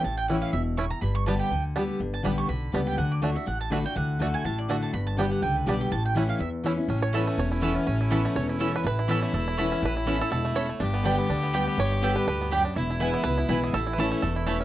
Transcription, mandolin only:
X:1
M:4/4
L:1/8
Q:"Swing" 1/4=245
K:Amix
V:1 name="Mandolin"
a g f =f e z c' _b | b c' a g2 z3 | z a b c' b3 g | f d c e f a b g |
f3 ^g a d f a | b a g f g B d g | a g f =f e z3 | z2 [CAeb] z3 [CAeb] z |
z2 [CAeb] z3 [CAeb] z | z2 [CAeb] z3 [CAeb] z | z2 [CAeb] z3 [CAeb] z | z2 [B,Gdg] z3 [B,Gdg] z |
z2 [B,Gdg] z3 [B,Gdg] z | z2 [B,EB^g] z3 [B,EBg] z | z2 [A,Eca] z3 [A,Eca] z |]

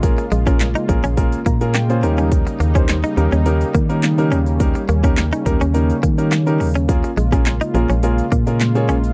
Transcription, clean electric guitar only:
X:1
M:4/4
L:1/16
Q:1/4=105
K:Bbdor
V:1 name="Clean electric guitar"
z2 A, D z E z D z2 B, z B, z2 D | z2 B, D z E z D z2 B, z3 D z | z2 B, D z E z D z2 B, z B, z2 D | z2 A, D z E z D z2 B, z3 D z |]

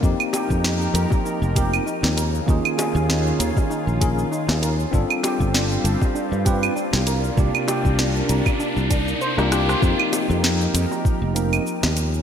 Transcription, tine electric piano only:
X:1
M:4/4
L:1/16
Q:"Swing 16ths" 1/4=98
K:Fm
V:1 name="Tine electric piano"
[B,CEG]8- [B,CEG]2 [B,CEB]2 z4 | [B,DFA]8- [B,DFA]2 [B,DFB]2 z4 | [C=DF=A]8- [CDFA]2 [CDF=B]2 z4 | [B,=DFG]8- [B,DFG]2 z3 [B,DFG] [B,DFG]2 |
[B,CEG]8- [B,CEG]2 [B,CEB]2 z4 |]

